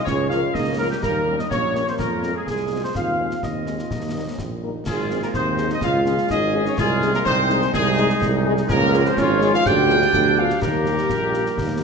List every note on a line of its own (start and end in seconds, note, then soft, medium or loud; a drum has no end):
0.00 0.55 G#3 medium
0.05 0.47 C#2 medium
0.05 0.32 C#4 medium
0.05 0.28 C#5 loud
0.05 0.18 C#5 medium
0.05 concert bass drum medium
0.05 snare medium
0.29 0.39 F3 medium
0.29 0.55 F4 medium
0.29 0.40 F4 medium
0.29 0.40 A#4 medium
0.29 0.53 F5 loud
0.29 0.42 F5 medium
0.29 snare medium
0.54 0.95 C#2 medium
0.54 1.00 A#3 medium
0.54 0.78 D#4 medium
0.54 0.65 D#5 medium
0.54 0.79 D#5 loud
0.54 concert bass drum medium
0.54 snare medium
0.78 0.88 F3 medium
0.78 0.85 A#3 medium
0.78 0.87 F4 medium
0.78 0.90 A#4 medium
0.78 0.88 A#4 medium
0.91 1.03 G3 medium
0.91 0.96 G4 medium
0.91 1.02 G4 medium
1.02 1.43 D#2 medium
1.02 1.47 G3 medium
1.02 1.42 A#3 medium
1.02 1.37 A#4 medium
1.02 1.37 A#4 loud
1.02 concert bass drum medium
1.02 snare medium
1.02 crash soft
1.27 1.35 G3 medium
1.27 1.35 C#4 medium
1.27 1.36 A#4 medium
1.38 1.51 D#4 medium
1.38 1.44 D#5 medium
1.38 1.50 D#5 medium
1.38 snare medium
1.50 1.91 A#1 medium
1.50 2.43 A#3 medium
1.50 1.85 C#4 medium
1.50 1.84 C#5 loud
1.50 1.85 C#5 medium
1.50 concert bass drum medium
1.50 snare medium
1.74 1.84 G3 medium
1.74 1.83 C#4 medium
1.74 1.83 A#4 medium
1.74 snare medium
1.87 1.93 C4 medium
1.87 1.93 C5 medium
1.87 snare medium
1.99 2.39 F2 medium
1.99 2.33 A#3 medium
1.99 2.32 A#4 medium
1.99 2.33 A#4 medium
1.99 concert bass drum medium
1.99 snare medium
2.23 2.31 G#3 medium
2.23 2.32 C4 medium
2.23 2.32 F4 medium
2.23 snare medium
2.35 2.46 G#3 medium
2.35 2.46 G#4 medium
2.35 2.47 G#4 medium
2.47 2.87 C2 medium
2.47 2.92 G#3 medium
2.47 2.81 G#3 medium
2.47 2.81 G#4 medium
2.47 concert bass drum medium
2.47 snare medium
2.71 2.80 G#3 medium
2.71 2.80 C4 medium
2.71 2.80 F4 medium
2.83 2.89 C4 medium
2.83 2.89 C5 medium
2.83 2.95 C5 medium
2.95 3.35 D#2 medium
2.95 3.38 C4 medium
2.95 3.40 F4 medium
2.95 3.40 F5 medium
2.95 concert bass drum medium
2.95 snare medium
3.18 3.27 G#3 soft
3.18 3.27 C4 soft
3.18 3.27 G#4 medium
3.31 snare medium
3.43 3.83 D#2 medium
3.43 3.77 C4 medium
3.43 4.36 D#4 medium
3.43 4.35 D#5 medium
3.43 4.40 D#5 medium
3.43 concert bass drum medium
3.43 snare medium
3.67 3.76 G#3 soft
3.67 3.76 C4 soft
3.67 3.76 G#4 medium
3.67 snare medium
3.79 3.91 F4 medium
3.79 snare soft
3.91 4.31 D#2 medium
3.91 4.28 D#4 medium
3.91 concert bass drum medium
3.91 snare medium
4.14 4.23 G3 soft
4.14 4.23 A#3 soft
4.14 4.23 A#4 soft
4.29 4.39 C#4 soft
4.38 4.79 A#1 medium
4.38 4.51 C4 medium
4.38 concert bass drum medium
4.38 snare medium
4.62 4.71 G3 soft
4.62 4.71 A#3 soft
4.62 4.86 D#4 medium
4.62 4.71 A#4 soft
4.86 5.27 G#1 medium
4.86 5.80 C3 medium
4.86 5.21 G#3 medium
4.86 6.75 G#3 medium
4.86 5.31 F4 medium
4.86 5.20 G#4 loud
4.86 concert bass drum medium
4.86 snare medium
4.86 crash medium
5.10 5.19 G#3 medium
5.10 5.19 C4 medium
5.10 5.19 G#4 medium
5.10 snare medium
5.22 5.34 A#3 medium
5.22 5.28 A#4 medium
5.22 snare medium
5.34 5.75 D#2 medium
5.34 5.69 C4 medium
5.34 5.83 D#4 medium
5.34 5.68 C5 loud
5.34 concert bass drum medium
5.34 snare medium
5.58 5.67 G#3 medium
5.58 5.67 C4 medium
5.58 5.67 G#4 medium
5.58 snare medium
5.70 5.76 D#4 medium
5.70 5.82 D#5 loud
5.70 snare medium
5.81 6.18 C#2 medium
5.81 6.79 C#3 medium
5.81 6.27 F4 loud
5.81 6.31 F4 medium
5.81 6.28 F5 loud
5.81 concert bass drum medium
5.81 snare medium
6.06 6.15 G#3 medium
6.06 6.15 C#4 medium
6.06 6.15 G#4 medium
6.06 snare medium
6.18 snare medium
6.30 6.70 G#1 medium
6.30 6.68 D#4 loud
6.30 6.75 G#4 loud
6.30 6.64 D#5 loud
6.30 concert bass drum medium
6.30 snare medium
6.54 6.62 G#3 medium
6.54 6.63 C#4 medium
6.54 6.63 G#4 medium
6.66 6.77 C#4 loud
6.66 6.79 C#5 loud
6.66 snare medium
6.77 7.18 C2 medium
6.77 8.66 D#3 medium
6.77 7.11 G#3 loud
6.77 8.66 G#3 medium
6.77 7.23 F4 loud
6.77 7.12 G#4 loud
6.77 concert bass drum medium
6.77 snare medium
6.77 crash soft
7.01 7.10 G#3 medium
7.01 7.10 D#4 medium
7.01 7.10 G#4 medium
7.01 snare medium
7.14 7.25 A#3 medium
7.14 7.20 A#4 loud
7.14 snare medium
7.25 7.66 C2 medium
7.25 7.71 C4 loud
7.25 8.70 D#4 loud
7.25 7.70 C5 loud
7.25 concert bass drum medium
7.25 snare medium
7.50 7.59 G#3 medium
7.50 7.59 D#4 medium
7.50 7.59 G#4 medium
7.50 snare medium
7.62 snare medium
7.74 8.14 C2 loud
7.74 8.42 G#3 loud
7.74 8.42 G#4 loud
7.74 concert bass drum loud
7.74 snare medium
7.97 8.07 G#3 medium
7.97 8.06 D#4 medium
7.97 8.06 G#4 medium
7.97 snare medium
8.10 snare medium
8.22 8.62 C2 loud
8.22 concert bass drum medium
8.22 snare medium
8.45 8.54 G#3 medium
8.45 8.54 D#4 medium
8.45 8.54 G#4 medium
8.57 snare medium
8.69 9.10 C#2 loud
8.69 10.59 F3 loud
8.69 9.63 G#3 loud
8.69 9.08 A#3 loud
8.69 9.17 C#4 loud
8.69 9.03 A#4 loud
8.69 concert bass drum loud
8.69 snare medium
8.69 crash soft
8.93 9.02 G#3 medium
8.93 9.02 F4 medium
8.93 9.02 G#4 medium
8.93 snare medium
9.05 9.17 C4 medium
9.05 9.18 C5 loud
9.05 snare medium
9.17 9.57 G#1 loud
9.17 9.55 C#4 loud
9.17 9.63 F4 loud
9.17 9.54 C#5 loud
9.17 concert bass drum medium
9.17 snare medium
9.41 9.50 G#3 medium
9.41 9.50 F4 medium
9.41 9.50 G#4 medium
9.41 snare medium
9.54 9.66 F4 loud
9.54 9.66 F5 loud
9.54 snare medium
9.66 10.06 D2 loud
9.66 10.62 B3 medium
9.66 10.62 D4 loud
9.66 10.34 G4 loud
9.66 10.38 G5 loud
9.66 concert bass drum loud
9.66 snare medium
9.89 9.98 B3 medium
9.89 9.98 F4 medium
9.89 9.98 G#4 medium
9.89 snare medium
10.02 snare medium
10.13 10.54 D2 loud
10.13 concert bass drum medium
10.13 snare medium
10.37 10.46 B3 medium
10.37 10.46 F4 medium
10.37 10.49 F4 loud
10.37 10.46 G#4 medium
10.37 10.62 F5 loud
10.50 snare medium
10.62 11.02 D#2 medium
10.62 11.84 G3 medium
10.62 11.84 A#3 loud
10.62 11.84 A#3 medium
10.62 11.84 G4 loud
10.62 11.84 A#4 loud
10.62 concert bass drum medium
10.62 snare medium
10.62 crash soft
10.85 10.94 A#3 medium
10.85 10.95 D#4 medium
10.85 10.95 G4 medium
10.85 snare medium
10.98 snare medium
11.09 11.50 A#1 medium
11.09 concert bass drum medium
11.09 snare medium
11.33 11.42 A#3 medium
11.33 11.42 D#4 medium
11.33 11.42 G4 medium
11.33 snare medium
11.46 snare medium
11.58 11.84 D#2 medium
11.58 concert bass drum medium
11.58 snare medium